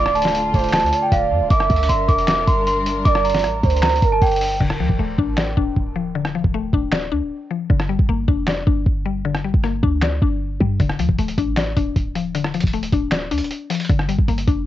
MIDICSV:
0, 0, Header, 1, 7, 480
1, 0, Start_track
1, 0, Key_signature, -1, "minor"
1, 0, Tempo, 387097
1, 1869, Time_signature, 4, 2, 24, 8
1, 18183, End_track
2, 0, Start_track
2, 0, Title_t, "Celesta"
2, 0, Program_c, 0, 8
2, 0, Note_on_c, 0, 86, 97
2, 174, Note_off_c, 0, 86, 0
2, 184, Note_on_c, 0, 81, 84
2, 863, Note_off_c, 0, 81, 0
2, 908, Note_on_c, 0, 81, 100
2, 1247, Note_off_c, 0, 81, 0
2, 1272, Note_on_c, 0, 79, 82
2, 1383, Note_off_c, 0, 79, 0
2, 1392, Note_on_c, 0, 77, 79
2, 1842, Note_off_c, 0, 77, 0
2, 1871, Note_on_c, 0, 86, 99
2, 2321, Note_off_c, 0, 86, 0
2, 2344, Note_on_c, 0, 84, 86
2, 2571, Note_off_c, 0, 84, 0
2, 2586, Note_on_c, 0, 86, 89
2, 2813, Note_off_c, 0, 86, 0
2, 2836, Note_on_c, 0, 86, 91
2, 3057, Note_off_c, 0, 86, 0
2, 3069, Note_on_c, 0, 84, 81
2, 3294, Note_off_c, 0, 84, 0
2, 3311, Note_on_c, 0, 84, 83
2, 3761, Note_off_c, 0, 84, 0
2, 3785, Note_on_c, 0, 86, 102
2, 4012, Note_off_c, 0, 86, 0
2, 4025, Note_on_c, 0, 82, 71
2, 4704, Note_off_c, 0, 82, 0
2, 4742, Note_on_c, 0, 82, 92
2, 5083, Note_off_c, 0, 82, 0
2, 5111, Note_on_c, 0, 81, 84
2, 5222, Note_off_c, 0, 81, 0
2, 5234, Note_on_c, 0, 79, 88
2, 5683, Note_off_c, 0, 79, 0
2, 18183, End_track
3, 0, Start_track
3, 0, Title_t, "Soft synth lead"
3, 0, Program_c, 1, 80
3, 0, Note_on_c, 1, 74, 122
3, 625, Note_off_c, 1, 74, 0
3, 668, Note_on_c, 1, 72, 85
3, 1120, Note_off_c, 1, 72, 0
3, 1151, Note_on_c, 1, 74, 90
3, 1827, Note_off_c, 1, 74, 0
3, 1872, Note_on_c, 1, 76, 127
3, 3261, Note_off_c, 1, 76, 0
3, 3793, Note_on_c, 1, 74, 112
3, 4468, Note_off_c, 1, 74, 0
3, 4508, Note_on_c, 1, 72, 100
3, 4960, Note_off_c, 1, 72, 0
3, 4987, Note_on_c, 1, 70, 89
3, 5665, Note_off_c, 1, 70, 0
3, 18183, End_track
4, 0, Start_track
4, 0, Title_t, "String section"
4, 0, Program_c, 2, 48
4, 0, Note_on_c, 2, 50, 90
4, 0, Note_on_c, 2, 57, 77
4, 0, Note_on_c, 2, 65, 97
4, 1830, Note_off_c, 2, 65, 0
4, 1831, Note_off_c, 2, 50, 0
4, 1831, Note_off_c, 2, 57, 0
4, 1869, Note_on_c, 2, 55, 89
4, 1869, Note_on_c, 2, 62, 81
4, 1869, Note_on_c, 2, 70, 98
4, 5670, Note_off_c, 2, 70, 0
4, 5671, Note_off_c, 2, 55, 0
4, 5671, Note_off_c, 2, 62, 0
4, 18183, End_track
5, 0, Start_track
5, 0, Title_t, "Synth pluck"
5, 0, Program_c, 3, 84
5, 5709, Note_on_c, 3, 50, 94
5, 5951, Note_on_c, 3, 53, 85
5, 6189, Note_on_c, 3, 57, 82
5, 6430, Note_on_c, 3, 62, 92
5, 6666, Note_on_c, 3, 74, 100
5, 6891, Note_off_c, 3, 62, 0
5, 6906, Note_on_c, 3, 62, 90
5, 6909, Note_off_c, 3, 50, 0
5, 7150, Note_off_c, 3, 53, 0
5, 7384, Note_on_c, 3, 53, 78
5, 7389, Note_off_c, 3, 57, 0
5, 7626, Note_on_c, 3, 50, 97
5, 7857, Note_off_c, 3, 53, 0
5, 7868, Note_off_c, 3, 74, 0
5, 7872, Note_on_c, 3, 53, 84
5, 8107, Note_off_c, 3, 62, 0
5, 8111, Note_on_c, 3, 57, 87
5, 8355, Note_on_c, 3, 62, 90
5, 8585, Note_on_c, 3, 74, 96
5, 8812, Note_off_c, 3, 62, 0
5, 8826, Note_on_c, 3, 62, 93
5, 8827, Note_off_c, 3, 50, 0
5, 9070, Note_off_c, 3, 53, 0
5, 9309, Note_on_c, 3, 53, 76
5, 9310, Note_off_c, 3, 57, 0
5, 9546, Note_on_c, 3, 50, 96
5, 9547, Note_off_c, 3, 74, 0
5, 9548, Note_off_c, 3, 62, 0
5, 9549, Note_off_c, 3, 53, 0
5, 9784, Note_on_c, 3, 55, 82
5, 10028, Note_on_c, 3, 58, 91
5, 10264, Note_on_c, 3, 62, 89
5, 10509, Note_on_c, 3, 74, 93
5, 10731, Note_off_c, 3, 62, 0
5, 10746, Note_on_c, 3, 62, 83
5, 10747, Note_off_c, 3, 50, 0
5, 10987, Note_off_c, 3, 55, 0
5, 11228, Note_off_c, 3, 58, 0
5, 11228, Note_on_c, 3, 55, 81
5, 11468, Note_on_c, 3, 50, 99
5, 11694, Note_off_c, 3, 55, 0
5, 11709, Note_off_c, 3, 74, 0
5, 11709, Note_on_c, 3, 55, 75
5, 11947, Note_off_c, 3, 62, 0
5, 11949, Note_on_c, 3, 58, 91
5, 12188, Note_on_c, 3, 62, 90
5, 12430, Note_on_c, 3, 74, 103
5, 12657, Note_off_c, 3, 62, 0
5, 12668, Note_off_c, 3, 50, 0
5, 12672, Note_on_c, 3, 62, 88
5, 12909, Note_off_c, 3, 55, 0
5, 13149, Note_off_c, 3, 58, 0
5, 13150, Note_on_c, 3, 55, 79
5, 13389, Note_off_c, 3, 55, 0
5, 13389, Note_on_c, 3, 50, 94
5, 13390, Note_off_c, 3, 74, 0
5, 13391, Note_off_c, 3, 62, 0
5, 13632, Note_on_c, 3, 53, 88
5, 13870, Note_on_c, 3, 57, 81
5, 14112, Note_on_c, 3, 62, 89
5, 14348, Note_on_c, 3, 74, 101
5, 14572, Note_off_c, 3, 62, 0
5, 14587, Note_on_c, 3, 62, 92
5, 14589, Note_off_c, 3, 50, 0
5, 14830, Note_off_c, 3, 53, 0
5, 15068, Note_on_c, 3, 53, 79
5, 15069, Note_off_c, 3, 57, 0
5, 15308, Note_on_c, 3, 50, 98
5, 15537, Note_off_c, 3, 53, 0
5, 15548, Note_off_c, 3, 74, 0
5, 15552, Note_on_c, 3, 53, 80
5, 15788, Note_off_c, 3, 62, 0
5, 15792, Note_on_c, 3, 57, 86
5, 16035, Note_on_c, 3, 62, 92
5, 16266, Note_on_c, 3, 74, 96
5, 16493, Note_off_c, 3, 62, 0
5, 16508, Note_off_c, 3, 50, 0
5, 16508, Note_on_c, 3, 62, 94
5, 16750, Note_off_c, 3, 53, 0
5, 16988, Note_on_c, 3, 53, 80
5, 16990, Note_off_c, 3, 57, 0
5, 17228, Note_off_c, 3, 74, 0
5, 17228, Note_on_c, 3, 50, 100
5, 17229, Note_off_c, 3, 53, 0
5, 17229, Note_off_c, 3, 62, 0
5, 17466, Note_on_c, 3, 55, 82
5, 17709, Note_on_c, 3, 58, 89
5, 17948, Note_on_c, 3, 62, 86
5, 18183, Note_off_c, 3, 50, 0
5, 18183, Note_off_c, 3, 55, 0
5, 18183, Note_off_c, 3, 58, 0
5, 18183, Note_off_c, 3, 62, 0
5, 18183, End_track
6, 0, Start_track
6, 0, Title_t, "808-style bass"
6, 0, Program_c, 4, 38
6, 0, Note_on_c, 4, 26, 112
6, 640, Note_off_c, 4, 26, 0
6, 669, Note_on_c, 4, 26, 108
6, 1030, Note_on_c, 4, 38, 102
6, 1048, Note_off_c, 4, 26, 0
6, 1143, Note_off_c, 4, 38, 0
6, 1388, Note_on_c, 4, 26, 106
6, 1630, Note_on_c, 4, 41, 96
6, 1648, Note_off_c, 4, 26, 0
6, 1750, Note_on_c, 4, 26, 101
6, 1769, Note_off_c, 4, 41, 0
6, 1864, Note_off_c, 4, 26, 0
6, 1869, Note_on_c, 4, 31, 117
6, 2099, Note_off_c, 4, 31, 0
6, 2110, Note_on_c, 4, 38, 106
6, 2340, Note_off_c, 4, 38, 0
6, 2350, Note_on_c, 4, 31, 102
6, 2580, Note_off_c, 4, 31, 0
6, 2588, Note_on_c, 4, 29, 105
6, 3049, Note_off_c, 4, 29, 0
6, 3069, Note_on_c, 4, 31, 99
6, 3760, Note_off_c, 4, 31, 0
6, 3789, Note_on_c, 4, 31, 112
6, 4269, Note_on_c, 4, 33, 100
6, 4288, Note_off_c, 4, 31, 0
6, 4497, Note_off_c, 4, 33, 0
6, 4508, Note_on_c, 4, 38, 105
6, 4970, Note_off_c, 4, 38, 0
6, 4989, Note_on_c, 4, 31, 102
6, 5219, Note_off_c, 4, 31, 0
6, 5229, Note_on_c, 4, 31, 102
6, 5689, Note_off_c, 4, 31, 0
6, 5709, Note_on_c, 4, 26, 108
6, 5949, Note_on_c, 4, 38, 101
6, 5967, Note_off_c, 4, 26, 0
6, 6063, Note_off_c, 4, 38, 0
6, 6069, Note_on_c, 4, 26, 105
6, 6181, Note_off_c, 4, 26, 0
6, 6188, Note_on_c, 4, 26, 100
6, 6419, Note_off_c, 4, 26, 0
6, 6428, Note_on_c, 4, 33, 102
6, 6889, Note_off_c, 4, 33, 0
6, 6908, Note_on_c, 4, 26, 103
6, 7139, Note_off_c, 4, 26, 0
6, 7148, Note_on_c, 4, 26, 97
6, 7955, Note_off_c, 4, 26, 0
6, 7988, Note_on_c, 4, 26, 103
6, 8334, Note_off_c, 4, 26, 0
6, 8347, Note_on_c, 4, 26, 105
6, 8828, Note_on_c, 4, 38, 101
6, 8846, Note_off_c, 4, 26, 0
6, 8948, Note_on_c, 4, 26, 96
6, 8967, Note_off_c, 4, 38, 0
6, 9063, Note_off_c, 4, 26, 0
6, 9548, Note_on_c, 4, 31, 115
6, 9894, Note_off_c, 4, 31, 0
6, 9908, Note_on_c, 4, 31, 105
6, 10021, Note_off_c, 4, 31, 0
6, 10028, Note_on_c, 4, 31, 103
6, 10259, Note_off_c, 4, 31, 0
6, 10267, Note_on_c, 4, 29, 102
6, 10729, Note_off_c, 4, 29, 0
6, 10748, Note_on_c, 4, 31, 103
6, 10979, Note_off_c, 4, 31, 0
6, 10988, Note_on_c, 4, 31, 103
6, 11795, Note_off_c, 4, 31, 0
6, 11828, Note_on_c, 4, 31, 102
6, 12174, Note_off_c, 4, 31, 0
6, 12187, Note_on_c, 4, 38, 101
6, 12649, Note_off_c, 4, 38, 0
6, 12668, Note_on_c, 4, 31, 104
6, 13129, Note_off_c, 4, 31, 0
6, 13148, Note_on_c, 4, 43, 101
6, 13379, Note_off_c, 4, 43, 0
6, 13389, Note_on_c, 4, 26, 110
6, 13629, Note_on_c, 4, 38, 102
6, 13647, Note_off_c, 4, 26, 0
6, 13743, Note_off_c, 4, 38, 0
6, 13749, Note_on_c, 4, 26, 100
6, 13864, Note_off_c, 4, 26, 0
6, 13870, Note_on_c, 4, 26, 103
6, 14100, Note_off_c, 4, 26, 0
6, 14108, Note_on_c, 4, 33, 102
6, 14569, Note_off_c, 4, 33, 0
6, 14590, Note_on_c, 4, 26, 102
6, 14820, Note_off_c, 4, 26, 0
6, 14828, Note_on_c, 4, 26, 101
6, 15635, Note_off_c, 4, 26, 0
6, 15670, Note_on_c, 4, 26, 100
6, 16015, Note_off_c, 4, 26, 0
6, 16028, Note_on_c, 4, 26, 108
6, 16509, Note_on_c, 4, 38, 99
6, 16528, Note_off_c, 4, 26, 0
6, 16629, Note_on_c, 4, 26, 100
6, 16647, Note_off_c, 4, 38, 0
6, 16743, Note_off_c, 4, 26, 0
6, 17229, Note_on_c, 4, 31, 113
6, 17574, Note_off_c, 4, 31, 0
6, 17589, Note_on_c, 4, 31, 106
6, 17701, Note_off_c, 4, 31, 0
6, 17708, Note_on_c, 4, 31, 105
6, 17939, Note_off_c, 4, 31, 0
6, 17948, Note_on_c, 4, 29, 102
6, 18183, Note_off_c, 4, 29, 0
6, 18183, End_track
7, 0, Start_track
7, 0, Title_t, "Drums"
7, 70, Note_on_c, 9, 37, 105
7, 189, Note_on_c, 9, 42, 53
7, 194, Note_off_c, 9, 37, 0
7, 269, Note_off_c, 9, 42, 0
7, 269, Note_on_c, 9, 42, 70
7, 309, Note_on_c, 9, 38, 71
7, 350, Note_off_c, 9, 42, 0
7, 350, Note_on_c, 9, 42, 84
7, 430, Note_off_c, 9, 42, 0
7, 430, Note_on_c, 9, 42, 77
7, 433, Note_off_c, 9, 38, 0
7, 554, Note_off_c, 9, 42, 0
7, 668, Note_on_c, 9, 36, 98
7, 670, Note_on_c, 9, 42, 63
7, 729, Note_off_c, 9, 42, 0
7, 729, Note_on_c, 9, 42, 61
7, 790, Note_off_c, 9, 42, 0
7, 790, Note_on_c, 9, 42, 62
7, 792, Note_off_c, 9, 36, 0
7, 850, Note_off_c, 9, 42, 0
7, 850, Note_on_c, 9, 42, 60
7, 898, Note_on_c, 9, 26, 84
7, 909, Note_on_c, 9, 38, 107
7, 910, Note_off_c, 9, 42, 0
7, 910, Note_on_c, 9, 42, 82
7, 990, Note_off_c, 9, 42, 0
7, 990, Note_on_c, 9, 42, 64
7, 1022, Note_off_c, 9, 26, 0
7, 1033, Note_off_c, 9, 38, 0
7, 1070, Note_off_c, 9, 42, 0
7, 1070, Note_on_c, 9, 42, 48
7, 1150, Note_off_c, 9, 42, 0
7, 1150, Note_on_c, 9, 42, 86
7, 1274, Note_off_c, 9, 42, 0
7, 1389, Note_on_c, 9, 36, 93
7, 1389, Note_on_c, 9, 42, 74
7, 1513, Note_off_c, 9, 36, 0
7, 1513, Note_off_c, 9, 42, 0
7, 1868, Note_on_c, 9, 42, 77
7, 1869, Note_on_c, 9, 36, 114
7, 1990, Note_on_c, 9, 37, 101
7, 1992, Note_off_c, 9, 42, 0
7, 1993, Note_off_c, 9, 36, 0
7, 2109, Note_on_c, 9, 42, 53
7, 2110, Note_on_c, 9, 36, 102
7, 2114, Note_off_c, 9, 37, 0
7, 2189, Note_off_c, 9, 42, 0
7, 2189, Note_on_c, 9, 42, 70
7, 2234, Note_off_c, 9, 36, 0
7, 2270, Note_off_c, 9, 42, 0
7, 2270, Note_on_c, 9, 42, 89
7, 2350, Note_off_c, 9, 42, 0
7, 2350, Note_on_c, 9, 42, 79
7, 2474, Note_off_c, 9, 42, 0
7, 2588, Note_on_c, 9, 36, 98
7, 2589, Note_on_c, 9, 42, 62
7, 2710, Note_off_c, 9, 42, 0
7, 2710, Note_on_c, 9, 42, 60
7, 2712, Note_off_c, 9, 36, 0
7, 2818, Note_on_c, 9, 26, 82
7, 2829, Note_off_c, 9, 42, 0
7, 2829, Note_on_c, 9, 38, 106
7, 2829, Note_on_c, 9, 42, 82
7, 2942, Note_off_c, 9, 26, 0
7, 2953, Note_off_c, 9, 38, 0
7, 2953, Note_off_c, 9, 42, 0
7, 3069, Note_on_c, 9, 36, 107
7, 3069, Note_on_c, 9, 42, 79
7, 3193, Note_off_c, 9, 36, 0
7, 3193, Note_off_c, 9, 42, 0
7, 3310, Note_on_c, 9, 42, 73
7, 3434, Note_off_c, 9, 42, 0
7, 3550, Note_on_c, 9, 42, 84
7, 3674, Note_off_c, 9, 42, 0
7, 3789, Note_on_c, 9, 36, 116
7, 3789, Note_on_c, 9, 42, 79
7, 3909, Note_on_c, 9, 37, 105
7, 3913, Note_off_c, 9, 36, 0
7, 3913, Note_off_c, 9, 42, 0
7, 4030, Note_on_c, 9, 42, 52
7, 4033, Note_off_c, 9, 37, 0
7, 4090, Note_off_c, 9, 42, 0
7, 4090, Note_on_c, 9, 42, 67
7, 4150, Note_off_c, 9, 42, 0
7, 4150, Note_on_c, 9, 38, 70
7, 4150, Note_on_c, 9, 42, 75
7, 4209, Note_off_c, 9, 42, 0
7, 4209, Note_on_c, 9, 42, 85
7, 4268, Note_on_c, 9, 37, 63
7, 4269, Note_off_c, 9, 42, 0
7, 4269, Note_on_c, 9, 42, 78
7, 4274, Note_off_c, 9, 38, 0
7, 4392, Note_off_c, 9, 37, 0
7, 4393, Note_off_c, 9, 42, 0
7, 4508, Note_on_c, 9, 36, 97
7, 4509, Note_on_c, 9, 42, 45
7, 4590, Note_off_c, 9, 42, 0
7, 4590, Note_on_c, 9, 42, 61
7, 4632, Note_off_c, 9, 36, 0
7, 4670, Note_off_c, 9, 42, 0
7, 4670, Note_on_c, 9, 42, 76
7, 4738, Note_on_c, 9, 26, 80
7, 4749, Note_on_c, 9, 38, 105
7, 4750, Note_off_c, 9, 42, 0
7, 4750, Note_on_c, 9, 42, 83
7, 4829, Note_off_c, 9, 42, 0
7, 4829, Note_on_c, 9, 42, 66
7, 4862, Note_off_c, 9, 26, 0
7, 4873, Note_off_c, 9, 38, 0
7, 4909, Note_off_c, 9, 42, 0
7, 4909, Note_on_c, 9, 42, 50
7, 4989, Note_off_c, 9, 42, 0
7, 4989, Note_on_c, 9, 36, 103
7, 4989, Note_on_c, 9, 42, 83
7, 5113, Note_off_c, 9, 36, 0
7, 5113, Note_off_c, 9, 42, 0
7, 5228, Note_on_c, 9, 36, 93
7, 5229, Note_on_c, 9, 42, 63
7, 5289, Note_off_c, 9, 42, 0
7, 5289, Note_on_c, 9, 42, 63
7, 5350, Note_off_c, 9, 42, 0
7, 5350, Note_on_c, 9, 42, 64
7, 5352, Note_off_c, 9, 36, 0
7, 5409, Note_off_c, 9, 42, 0
7, 5409, Note_on_c, 9, 42, 66
7, 5470, Note_on_c, 9, 46, 85
7, 5533, Note_off_c, 9, 42, 0
7, 5594, Note_off_c, 9, 46, 0
7, 5709, Note_on_c, 9, 36, 114
7, 5709, Note_on_c, 9, 49, 86
7, 5828, Note_on_c, 9, 37, 99
7, 5833, Note_off_c, 9, 36, 0
7, 5833, Note_off_c, 9, 49, 0
7, 5952, Note_off_c, 9, 37, 0
7, 6069, Note_on_c, 9, 36, 98
7, 6193, Note_off_c, 9, 36, 0
7, 6428, Note_on_c, 9, 36, 98
7, 6552, Note_off_c, 9, 36, 0
7, 6657, Note_on_c, 9, 26, 84
7, 6668, Note_on_c, 9, 38, 105
7, 6781, Note_off_c, 9, 26, 0
7, 6792, Note_off_c, 9, 38, 0
7, 6908, Note_on_c, 9, 36, 103
7, 7032, Note_off_c, 9, 36, 0
7, 7147, Note_on_c, 9, 36, 94
7, 7271, Note_off_c, 9, 36, 0
7, 7748, Note_on_c, 9, 37, 97
7, 7872, Note_off_c, 9, 37, 0
7, 7988, Note_on_c, 9, 36, 99
7, 8112, Note_off_c, 9, 36, 0
7, 8347, Note_on_c, 9, 36, 92
7, 8471, Note_off_c, 9, 36, 0
7, 8577, Note_on_c, 9, 26, 82
7, 8588, Note_on_c, 9, 38, 103
7, 8701, Note_off_c, 9, 26, 0
7, 8712, Note_off_c, 9, 38, 0
7, 9548, Note_on_c, 9, 36, 113
7, 9668, Note_on_c, 9, 37, 100
7, 9672, Note_off_c, 9, 36, 0
7, 9792, Note_off_c, 9, 37, 0
7, 9908, Note_on_c, 9, 36, 96
7, 10032, Note_off_c, 9, 36, 0
7, 10267, Note_on_c, 9, 36, 92
7, 10391, Note_off_c, 9, 36, 0
7, 10497, Note_on_c, 9, 26, 82
7, 10508, Note_on_c, 9, 38, 103
7, 10621, Note_off_c, 9, 26, 0
7, 10632, Note_off_c, 9, 38, 0
7, 10748, Note_on_c, 9, 36, 105
7, 10872, Note_off_c, 9, 36, 0
7, 10988, Note_on_c, 9, 36, 91
7, 11112, Note_off_c, 9, 36, 0
7, 11588, Note_on_c, 9, 37, 101
7, 11712, Note_off_c, 9, 37, 0
7, 11828, Note_on_c, 9, 36, 101
7, 11948, Note_on_c, 9, 37, 60
7, 11952, Note_off_c, 9, 36, 0
7, 12072, Note_off_c, 9, 37, 0
7, 12187, Note_on_c, 9, 36, 96
7, 12311, Note_off_c, 9, 36, 0
7, 12416, Note_on_c, 9, 26, 82
7, 12427, Note_on_c, 9, 38, 101
7, 12540, Note_off_c, 9, 26, 0
7, 12551, Note_off_c, 9, 38, 0
7, 12668, Note_on_c, 9, 36, 106
7, 12792, Note_off_c, 9, 36, 0
7, 13148, Note_on_c, 9, 36, 87
7, 13272, Note_off_c, 9, 36, 0
7, 13388, Note_on_c, 9, 36, 117
7, 13388, Note_on_c, 9, 42, 73
7, 13508, Note_on_c, 9, 37, 101
7, 13512, Note_off_c, 9, 36, 0
7, 13512, Note_off_c, 9, 42, 0
7, 13628, Note_on_c, 9, 42, 84
7, 13632, Note_off_c, 9, 37, 0
7, 13749, Note_on_c, 9, 36, 100
7, 13752, Note_off_c, 9, 42, 0
7, 13869, Note_on_c, 9, 42, 61
7, 13873, Note_off_c, 9, 36, 0
7, 13989, Note_off_c, 9, 42, 0
7, 13989, Note_on_c, 9, 42, 60
7, 14108, Note_on_c, 9, 36, 93
7, 14109, Note_off_c, 9, 42, 0
7, 14109, Note_on_c, 9, 42, 69
7, 14232, Note_off_c, 9, 36, 0
7, 14233, Note_off_c, 9, 42, 0
7, 14337, Note_on_c, 9, 26, 81
7, 14348, Note_on_c, 9, 38, 105
7, 14349, Note_on_c, 9, 42, 84
7, 14461, Note_off_c, 9, 26, 0
7, 14472, Note_off_c, 9, 38, 0
7, 14473, Note_off_c, 9, 42, 0
7, 14590, Note_on_c, 9, 36, 103
7, 14590, Note_on_c, 9, 42, 84
7, 14714, Note_off_c, 9, 36, 0
7, 14714, Note_off_c, 9, 42, 0
7, 14829, Note_on_c, 9, 36, 91
7, 14829, Note_on_c, 9, 42, 73
7, 14953, Note_off_c, 9, 36, 0
7, 14953, Note_off_c, 9, 42, 0
7, 15069, Note_on_c, 9, 42, 74
7, 15193, Note_off_c, 9, 42, 0
7, 15309, Note_on_c, 9, 42, 74
7, 15430, Note_on_c, 9, 37, 99
7, 15433, Note_off_c, 9, 42, 0
7, 15550, Note_on_c, 9, 42, 50
7, 15554, Note_off_c, 9, 37, 0
7, 15629, Note_off_c, 9, 42, 0
7, 15629, Note_on_c, 9, 42, 69
7, 15670, Note_on_c, 9, 36, 99
7, 15709, Note_off_c, 9, 42, 0
7, 15709, Note_on_c, 9, 42, 85
7, 15789, Note_off_c, 9, 42, 0
7, 15789, Note_on_c, 9, 42, 61
7, 15794, Note_off_c, 9, 36, 0
7, 15909, Note_off_c, 9, 42, 0
7, 15909, Note_on_c, 9, 42, 64
7, 16028, Note_off_c, 9, 42, 0
7, 16028, Note_on_c, 9, 36, 94
7, 16028, Note_on_c, 9, 42, 69
7, 16152, Note_off_c, 9, 36, 0
7, 16152, Note_off_c, 9, 42, 0
7, 16257, Note_on_c, 9, 26, 82
7, 16268, Note_on_c, 9, 38, 105
7, 16269, Note_on_c, 9, 42, 82
7, 16381, Note_off_c, 9, 26, 0
7, 16392, Note_off_c, 9, 38, 0
7, 16393, Note_off_c, 9, 42, 0
7, 16510, Note_on_c, 9, 42, 67
7, 16590, Note_off_c, 9, 42, 0
7, 16590, Note_on_c, 9, 42, 65
7, 16670, Note_off_c, 9, 42, 0
7, 16670, Note_on_c, 9, 42, 64
7, 16750, Note_off_c, 9, 42, 0
7, 16750, Note_on_c, 9, 42, 74
7, 16874, Note_off_c, 9, 42, 0
7, 16990, Note_on_c, 9, 42, 65
7, 16990, Note_on_c, 9, 46, 81
7, 17049, Note_off_c, 9, 42, 0
7, 17049, Note_on_c, 9, 42, 65
7, 17110, Note_off_c, 9, 42, 0
7, 17110, Note_on_c, 9, 42, 66
7, 17114, Note_off_c, 9, 46, 0
7, 17170, Note_off_c, 9, 42, 0
7, 17170, Note_on_c, 9, 42, 64
7, 17229, Note_off_c, 9, 42, 0
7, 17229, Note_on_c, 9, 36, 116
7, 17229, Note_on_c, 9, 42, 74
7, 17349, Note_on_c, 9, 37, 103
7, 17353, Note_off_c, 9, 36, 0
7, 17353, Note_off_c, 9, 42, 0
7, 17468, Note_on_c, 9, 42, 82
7, 17473, Note_off_c, 9, 37, 0
7, 17589, Note_on_c, 9, 36, 103
7, 17592, Note_off_c, 9, 42, 0
7, 17709, Note_on_c, 9, 42, 59
7, 17713, Note_off_c, 9, 36, 0
7, 17829, Note_off_c, 9, 42, 0
7, 17829, Note_on_c, 9, 42, 61
7, 17948, Note_on_c, 9, 36, 97
7, 17949, Note_off_c, 9, 42, 0
7, 17949, Note_on_c, 9, 42, 71
7, 18072, Note_off_c, 9, 36, 0
7, 18073, Note_off_c, 9, 42, 0
7, 18183, End_track
0, 0, End_of_file